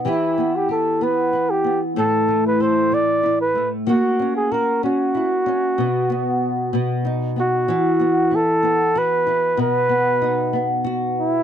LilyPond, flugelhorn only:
\new Staff \with { instrumentName = "Flugelhorn" } { \time 6/8 \key e \minor \tempo 4. = 63 e'8. g'16 a'8 b'8. g'8 r16 | a'8. b'16 c''8 d''8. b'8 r16 | fis'8. gis'16 ais'8 fis'4.~ | fis'2 r8 fis'8~ |
fis'4 a'4 b'4 | b'2 r8 e'8 | }